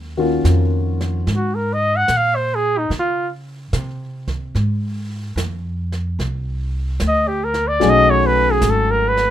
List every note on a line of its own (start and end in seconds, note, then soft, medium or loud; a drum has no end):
0.00 0.43 D#2 medium
0.17 1.21 D#3 medium
0.17 1.22 A#3 medium
0.17 1.22 C#4 medium
0.17 1.22 F4 medium
0.17 1.21 F#4 medium
0.44 1.24 F2 medium
0.44 snare medium
0.44 hi-hat pedal medium
1.01 snare soft
1.27 2.06 G#2 medium
1.27 brush sweep medium
1.27 snare soft
1.36 1.56 F#4 medium
1.55 1.75 A#4 medium
1.73 1.98 D#5 medium
1.96 2.18 F#5 medium
2.08 2.89 A#2 medium
2.08 snare medium
2.08 hi-hat pedal medium
2.17 2.37 F5 medium
2.36 2.56 C5 medium
2.55 2.80 G#4 medium
2.78 2.91 D#4 medium
2.90 3.70 C#3 medium
2.90 brush sweep soft
2.90 snare soft
3.00 3.30 F4 medium
3.73 4.53 C3 medium
3.73 snare medium
3.73 hi-hat pedal medium
4.28 kick soft
4.28 snare soft
4.55 5.34 G#2 medium
4.55 brush sweep soft
4.55 snare soft
5.36 6.15 F2 medium
5.36 snare medium
5.36 hi-hat pedal medium
5.92 snare soft
6.19 6.97 C2 medium
6.19 brush sweep soft
6.19 snare soft
7.00 7.79 D2 medium
7.00 snare medium
7.00 hi-hat pedal medium
7.08 7.29 D#5 medium
7.28 7.46 G4 medium
7.44 7.69 A#4 medium
7.54 snare soft
7.68 7.91 D5 medium
7.80 8.60 B1 medium
7.80 8.29 F#3 medium
7.80 8.29 A3 medium
7.80 8.30 C#4 medium
7.80 8.30 D#4 medium
7.80 8.31 G#4 medium
7.80 brush sweep soft
7.80 snare soft
7.90 8.12 D#5 medium
8.10 8.28 C#5 medium
8.26 8.53 B4 medium
8.51 8.71 G#4 medium
8.61 9.30 G#1 medium
8.61 snare medium
8.61 hi-hat pedal medium
8.70 8.93 A4 medium
8.91 9.10 A#4 medium
9.09 9.30 B4 medium
9.17 snare soft